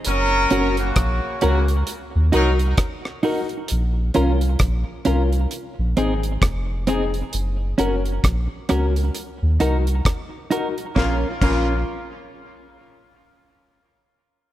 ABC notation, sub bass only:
X:1
M:4/4
L:1/16
Q:"Swing 16ths" 1/4=66
K:Bbm
V:1 name="Sub bass" clef=bass
G,,,2 G,,,2 B,,, z D,,2 z E,, C,,2 z4 | B,,,2 C,,2 B,,, z C,,2 z B,,, A,,,2 F,,,4 | G,,,2 G,,,2 B,,, z D,,2 z E,, C,,2 z4 | B,,, z B,,,2 z12 |]